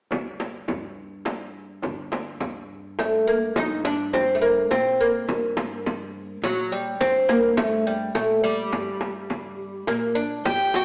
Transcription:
0.11 0.70 G1 medium
0.11 darbuka dum medium
0.11 frame drum medium
0.40 darbuka tek soft
0.40 frame drum medium
0.68 1.79 G2 medium
0.68 darbuka dum medium
0.68 frame drum medium
1.25 darbuka tek medium
1.25 frame drum medium
1.54 darbuka ka soft
1.82 2.36 G1 medium
1.82 darbuka dum medium
1.82 frame drum medium
2.12 darbuka tek medium
2.12 frame drum medium
2.40 3.51 G2 medium
2.40 frame drum medium
2.40 darbuka dum medium
2.99 3.27 A3 medium
2.99 darbuka tek medium
2.99 frame drum medium
3.27 3.54 A#3 medium
3.27 darbuka ka soft
3.56 4.66 G2 medium
3.56 3.84 D#4 medium
3.56 frame drum medium
3.85 4.13 D4 medium
3.85 frame drum medium
4.13 4.35 C4 medium
4.13 frame drum medium
4.35 4.41 A3 medium
4.42 4.71 A#3 medium
4.71 5.24 A#2 medium
4.71 5.00 C4 medium
4.71 frame drum medium
5.01 6.47 A#3 medium
5.27 6.38 G2 medium
5.27 frame drum medium
5.57 frame drum medium
5.86 frame drum medium
6.42 6.95 A#2 medium
6.42 6.72 F#3 medium
6.42 frame drum medium
6.72 7.01 G3 medium
7.00 8.11 G2 medium
7.00 7.30 C4 medium
7.00 frame drum medium
7.29 7.55 A#3 medium
7.29 frame drum medium
7.57 7.86 A3 medium
7.57 frame drum medium
7.87 8.15 G3 medium
8.15 8.68 A#2 medium
8.15 8.44 A3 medium
8.15 frame drum medium
8.44 9.92 G3 medium
8.72 9.83 G2 medium
8.72 frame drum medium
9.01 frame drum medium
9.30 frame drum medium
9.87 10.41 A#2 medium
9.87 10.17 A#3 medium
9.87 frame drum medium
10.15 10.45 D4 medium
10.45 10.85 G2 medium
10.45 10.72 G4 loud
10.45 10.85 G5 medium
10.45 frame drum medium
10.74 10.85 F#4 medium
10.74 frame drum medium

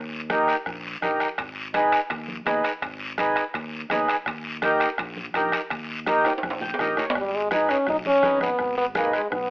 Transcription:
0.00 0.52 D#2 medium
0.30 0.56 D#4 medium
0.30 0.56 G4 medium
0.30 0.56 A#4 medium
0.30 bombo rim medium
0.30 high conga medium
0.30 short guiro medium
0.48 bombo rim medium
0.48 short guiro medium
0.66 0.95 A#1 medium
0.66 bombo low medium
0.66 bombo rim medium
0.66 high conga soft
0.66 long guiro medium
1.02 1.17 A#1 medium
1.02 1.28 D#4 medium
1.02 1.28 G4 medium
1.02 1.28 A#4 medium
1.02 bombo low medium
1.02 bombo rim medium
1.02 high conga medium
1.02 short guiro medium
1.20 bombo rim medium
1.20 short guiro medium
1.38 1.96 G#1 medium
1.38 bombo low medium
1.38 bombo rim medium
1.38 high conga soft
1.38 high timbale medium
1.38 long guiro medium
1.74 2.00 D#4 medium
1.74 2.00 G#4 medium
1.74 2.00 B4 loud
1.74 bombo rim medium
1.74 high conga medium
1.74 high timbale medium
1.74 short guiro medium
1.92 bombo rim medium
1.92 high timbale medium
1.92 short guiro medium
2.10 2.39 D#2 medium
2.10 bombo low medium
2.10 bombo rim medium
2.10 high conga soft
2.10 high timbale medium
2.10 long guiro medium
2.28 high conga medium
2.46 2.61 D#2 medium
2.46 2.72 D#4 medium
2.46 2.72 G#4 medium
2.46 2.72 B4 medium
2.46 bombo rim medium
2.46 high conga medium
2.46 high timbale medium
2.46 low timbale medium
2.46 short guiro medium
2.64 bombo rim medium
2.64 high timbale medium
2.64 short guiro medium
2.82 3.40 G#1 medium
2.82 bombo low medium
2.82 bombo rim medium
2.82 high conga soft
2.82 high timbale medium
2.82 long guiro medium
3.18 3.44 D#4 medium
3.18 3.44 G#4 medium
3.18 3.44 B4 medium
3.18 bombo rim medium
3.18 high conga medium
3.18 high timbale medium
3.18 short guiro medium
3.36 bombo rim medium
3.36 high timbale medium
3.36 short guiro medium
3.54 3.83 D#2 medium
3.54 bombo low medium
3.54 bombo rim medium
3.54 high conga soft
3.54 high timbale medium
3.54 long guiro medium
3.90 4.05 D#2 medium
3.90 4.16 D#4 medium
3.90 4.16 G#4 medium
3.90 4.16 B4 medium
3.90 bombo rim medium
3.90 high conga medium
3.90 high timbale medium
3.90 low timbale medium
3.90 short guiro medium
4.08 bombo rim medium
4.08 high timbale medium
4.08 short guiro medium
4.26 4.84 D#2 medium
4.26 bombo low medium
4.26 bombo rim medium
4.26 high conga soft
4.26 high timbale medium
4.26 long guiro medium
4.62 4.88 D#4 medium
4.62 4.89 G4 medium
4.62 4.89 A#4 loud
4.62 bombo rim medium
4.62 high conga medium
4.62 high timbale medium
4.62 short guiro medium
4.80 bombo rim medium
4.80 high timbale medium
4.80 short guiro medium
4.98 5.28 A#1 medium
4.98 bombo low medium
4.98 bombo rim medium
4.98 high conga soft
4.98 high timbale medium
4.98 long guiro medium
5.17 high conga medium
5.34 5.49 A#1 medium
5.34 5.60 D#4 medium
5.34 5.60 G4 medium
5.34 5.61 A#4 medium
5.34 bombo rim medium
5.34 high conga medium
5.34 high timbale medium
5.34 short guiro medium
5.52 bombo rim medium
5.52 high conga medium
5.52 high timbale medium
5.52 short guiro medium
5.70 6.29 D#2 medium
5.70 bombo low medium
5.70 bombo rim medium
5.70 high conga soft
5.70 high timbale medium
5.70 long guiro medium
6.06 6.33 D#4 medium
6.06 6.33 G4 medium
6.06 6.33 A#4 medium
6.06 bombo rim medium
6.06 high conga medium
6.06 high timbale medium
6.06 short guiro medium
6.25 bombo rim medium
6.25 high timbale medium
6.25 short guiro medium
6.38 high timbale medium
6.43 6.72 A#1 medium
6.43 bombo low medium
6.43 bombo rim medium
6.43 high conga medium
6.43 long guiro medium
6.50 high timbale medium
6.61 6.79 G5 medium
6.61 low conga medium
6.74 low timbale medium
6.79 6.94 A#1 medium
6.79 7.05 D#4 medium
6.79 7.05 G4 medium
6.79 7.05 A#4 medium
6.79 6.96 D#5 medium
6.79 bombo rim medium
6.79 low conga medium
6.79 short guiro medium
6.97 7.14 C#5 medium
6.97 bombo rim medium
6.97 low conga medium
6.97 short guiro medium
7.10 low timbale medium
7.15 7.73 G#1 medium
7.15 7.37 G3 medium
7.15 bombo low medium
7.15 bombo rim medium
7.15 high conga soft
7.15 long guiro medium
7.35 7.52 G#3 loud
7.51 7.77 D#4 medium
7.51 7.71 D#4 medium
7.51 7.77 G#4 medium
7.51 7.77 B4 medium
7.51 bombo rim medium
7.51 high conga medium
7.51 short guiro medium
7.69 7.88 C#4 medium
7.69 bombo rim medium
7.69 short guiro medium
7.87 8.02 B1 loud
7.87 7.97 D#4 loud
7.87 bombo low medium
7.87 bombo rim medium
7.87 high conga soft
7.87 low conga medium
7.87 long guiro medium
8.05 8.40 C#4 loud
8.05 high conga medium
8.23 8.52 G#1 medium
8.23 8.49 D#4 medium
8.23 8.49 G#4 medium
8.23 8.49 B4 medium
8.23 bombo low medium
8.23 bombo rim medium
8.23 high conga medium
8.23 short guiro medium
8.41 8.76 B3 medium
8.41 bombo rim medium
8.41 high conga medium
8.41 short guiro medium
8.59 9.17 G#1 medium
8.59 bombo low medium
8.59 bombo rim medium
8.59 high conga soft
8.59 long guiro medium
8.78 8.86 B3 medium
8.95 9.13 A#3 medium
8.95 9.21 D#4 medium
8.95 9.21 G#4 medium
8.95 9.21 B4 medium
8.95 bombo rim medium
8.95 high conga medium
8.95 short guiro medium
9.13 9.30 G#3 medium
9.13 bombo rim medium
9.13 short guiro medium
9.31 9.47 B1 loud
9.31 9.50 B3 medium
9.31 bombo low medium
9.31 bombo rim medium
9.31 high conga soft
9.31 low conga medium
9.31 long guiro medium

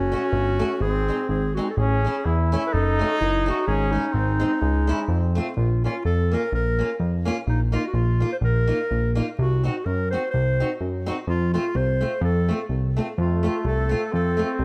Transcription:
0.00 0.16 F#1 loud
0.00 0.80 C#4 medium
0.00 0.83 F#4 loud
0.12 0.21 A3 medium
0.12 0.22 C#4 medium
0.12 0.22 F#4 medium
0.32 0.64 G1 loud
0.59 0.69 A3 medium
0.59 0.69 C#4 medium
0.59 0.70 F#4 medium
0.80 1.12 G#1 medium
0.80 1.52 C4 medium
0.80 1.29 G#4 loud
1.08 1.18 G#3 medium
1.08 1.18 C4 medium
1.08 1.18 D#4 medium
1.29 1.60 G#1 medium
1.29 1.56 G#4 medium
1.54 1.66 G#3 medium
1.54 1.66 C4 medium
1.54 1.69 F#4 medium
1.59 1.67 D#4 medium
1.70 1.79 A4 medium
1.77 2.08 A1 loud
1.77 2.27 C#4 loud
1.77 2.48 G#4 medium
2.05 2.14 A3 medium
2.05 2.14 C#4 medium
2.05 2.15 E4 medium
2.25 2.56 E2 medium
2.25 2.74 E4 medium
2.52 2.62 A3 medium
2.52 2.62 C#4 medium
2.52 2.62 E4 medium
2.66 2.74 B4 medium
2.73 3.04 F#1 loud
2.73 3.67 D#4 loud
2.73 3.22 A4 medium
2.99 3.09 A3 medium
2.99 3.09 C#4 medium
2.99 3.10 F#4 medium
3.20 3.52 F#1 loud
3.20 3.50 E4 medium
3.46 3.56 A3 medium
3.46 3.56 C#4 medium
3.46 3.57 F#4 medium
3.46 3.68 F#4 medium
3.67 3.98 G#1 loud
3.67 4.14 C#4 loud
3.67 3.93 G#4 medium
3.92 4.03 G#3 medium
3.92 4.03 C#4 medium
3.92 5.35 D#4 medium
3.92 4.04 E4 medium
4.13 4.45 G#1 loud
4.13 4.63 C4 medium
4.40 4.50 G#3 medium
4.40 4.50 C4 medium
4.40 4.51 D#4 medium
4.61 4.93 C#2 loud
4.61 5.13 G#3 medium
4.87 4.97 G#3 medium
4.87 4.98 C#4 medium
4.87 4.98 E4 medium
5.08 5.40 F2 medium
5.08 5.58 C4 medium
5.35 5.45 A3 medium
5.35 5.46 C4 medium
5.35 5.47 F4 medium
5.57 5.88 A#1 loud
5.57 5.82 F4 medium
5.84 5.94 A#3 medium
5.84 5.94 C#4 medium
5.84 6.04 F4 medium
5.84 5.95 F4 medium
6.05 6.36 F2 medium
6.05 6.35 A4 medium
6.32 6.41 A#3 medium
6.32 6.42 C#4 medium
6.32 6.43 F4 medium
6.32 6.54 A#4 medium
6.52 6.83 A#1 medium
6.52 6.98 A#4 medium
6.79 6.88 A#3 medium
6.79 6.89 C#4 soft
6.79 6.89 F4 medium
7.00 7.30 F2 medium
7.25 7.35 A#3 medium
7.25 7.36 C#4 medium
7.25 7.36 F4 medium
7.47 7.78 A#1 medium
7.47 7.60 D#4 medium
7.72 7.82 A#3 medium
7.72 7.83 D#4 medium
7.72 7.83 F4 medium
7.72 7.87 F4 medium
7.87 7.96 F#4 medium
7.93 8.25 A#1 medium
7.93 8.31 F4 medium
8.20 8.30 A#3 medium
8.20 8.30 D#4 medium
8.20 8.31 F4 medium
8.33 8.37 C5 medium
8.41 8.73 A#1 medium
8.41 9.13 A#4 medium
8.67 8.78 A#3 medium
8.67 8.78 D#4 medium
8.67 8.78 F4 medium
8.91 9.22 A#1 medium
9.15 9.26 A#3 medium
9.15 9.26 D#4 medium
9.15 9.26 F4 medium
9.39 9.69 C2 loud
9.39 9.64 F#4 medium
9.64 9.73 C4 medium
9.64 9.74 D#4 medium
9.64 9.74 F#4 medium
9.64 9.87 F#4 medium
9.85 10.16 F#2 medium
9.85 10.10 A#4 medium
10.11 10.22 C4 medium
10.11 10.22 D#4 medium
10.11 10.22 F#4 medium
10.11 10.30 C5 medium
10.31 10.64 C2 medium
10.31 10.76 C5 medium
10.60 10.69 C4 medium
10.60 10.69 D#4 medium
10.60 10.70 F#4 medium
10.81 11.11 F#2 medium
11.06 11.16 C4 medium
11.06 11.16 D#4 medium
11.06 11.16 F#4 medium
11.27 11.58 F2 medium
11.27 11.51 F4 medium
11.54 11.63 A3 medium
11.54 11.63 C4 medium
11.54 11.78 F4 medium
11.54 11.64 F4 medium
11.75 12.06 C2 medium
11.75 12.23 C5 medium
12.01 12.10 A3 medium
12.01 12.10 C4 medium
12.01 12.11 F4 medium
12.21 12.52 F2 loud
12.21 12.67 A4 medium
12.49 12.58 A3 medium
12.49 12.58 C4 medium
12.49 12.59 F4 medium
12.69 13.00 C2 medium
12.97 13.06 A3 medium
12.97 13.06 C4 medium
12.97 13.07 F4 medium
13.17 13.49 F2 loud
13.17 14.13 A3 medium
13.17 13.42 F4 medium
13.43 13.53 A3 medium
13.43 13.53 C4 medium
13.43 13.54 F4 medium
13.43 13.65 F4 medium
13.65 13.95 C2 medium
13.65 13.90 A4 medium
13.89 13.99 A3 medium
13.89 14.00 C4 medium
13.89 14.00 F4 medium
13.89 14.11 A4 medium
14.12 14.44 F2 medium
14.12 14.65 C4 medium
14.12 14.57 A4 medium
14.37 14.47 A3 medium
14.37 14.47 C4 medium
14.37 14.48 F4 medium
14.59 14.65 C2 medium

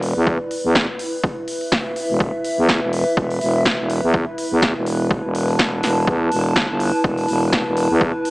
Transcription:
0.00 0.14 E1 loud
0.00 8.30 E4 medium
0.00 8.30 B4 medium
0.00 0.49 D5 medium
0.00 open hi-hat loud
0.16 0.38 E2 medium
0.27 kick loud
0.51 open hi-hat loud
0.64 0.86 E2 medium
0.75 kick loud
0.75 snare loud
0.96 4.85 E5 medium
0.96 open hi-hat loud
1.24 kick loud
1.48 open hi-hat loud
1.61 open hi-hat medium
1.72 kick loud
1.72 snare loud
1.96 open hi-hat loud
2.09 2.31 E1 loud
2.20 kick loud
2.45 open hi-hat loud
2.58 2.80 E2 medium
2.69 kick loud
2.69 snare loud
2.82 3.04 E1 medium
2.93 open hi-hat loud
3.17 3.40 E1 medium
3.17 kick loud
3.30 open hi-hat medium
3.41 3.77 E1 medium
3.41 open hi-hat loud
3.65 kick loud
3.65 snare loud
3.79 4.01 E1 loud
3.90 open hi-hat loud
4.03 4.25 E2 medium
4.14 kick loud
4.38 open hi-hat loud
4.51 4.73 E2 medium
4.62 kick loud
4.62 snare loud
4.76 5.22 E1 medium
4.83 8.30 A5 medium
4.83 open hi-hat loud
5.11 kick loud
5.24 5.57 E1 loud
5.35 open hi-hat loud
5.48 open hi-hat medium
5.59 5.81 E1 medium
5.59 kick loud
5.59 snare loud
5.83 6.06 E1 loud
5.83 snare medium
5.83 open hi-hat loud
6.07 6.30 E2 medium
6.07 kick loud
6.32 6.54 E1 loud
6.32 open hi-hat loud
6.56 6.67 G1 loud
6.56 kick loud
6.56 snare loud
6.69 6.91 G1 loud
6.80 open hi-hat loud
7.04 7.27 E1 medium
7.04 kick loud
7.18 open hi-hat medium
7.28 7.64 E1 loud
7.28 open hi-hat loud
7.53 kick loud
7.53 snare loud
7.66 7.88 E1 loud
7.77 open hi-hat loud
7.90 8.12 E2 loud
8.01 kick loud
8.25 open hi-hat loud

